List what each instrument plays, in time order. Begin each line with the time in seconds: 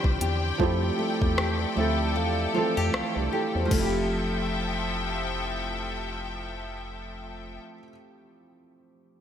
Already playing: nylon-string guitar D3 C4 F4 G4, felt piano F3 C4 D4 E4 G4, string section G4 C5 D5 G5
0.04 fm bass C2, kick
0.21 fm bass E2, nylon-string guitar G4, closed hi-hat
0.58 fm bass F2, felt piano F3 A3 C4 E4, string section A4, kick
0.63 felt piano G4
0.99 nylon-string guitar A3
1.22 fm bass E2, kick
1.38 nylon-string guitar G4, cross-stick
1.75 fm bass D2, felt piano F3 A3 C4 E4 E5, nylon-string guitar E4
1.80 felt piano A4
2.16 fm bass E2, nylon-string guitar A3, felt piano F5
2.53 felt piano E3 F3 A3 C4, nylon-string guitar F4
2.58 felt piano A4
2.77 fm bass F2, nylon-string guitar G4
2.94 fm bass C2, nylon-string guitar E4, felt piano F5, cross-stick
3.17 fm bass C2, felt piano D4 G4
3.32 felt piano E4 A4 G5, nylon-string guitar G4
3.55 fm bass E2, felt piano G4 C5
3.62 felt piano F3, nylon-string guitar F3
3.67 felt piano A3
3.71 fm bass F1, string section F3 A4 E5 G5, nylon-string guitar A3, felt piano C4, kick, crash
3.77 felt piano E4, nylon-string guitar E4
3.82 felt piano G4, nylon-string guitar G4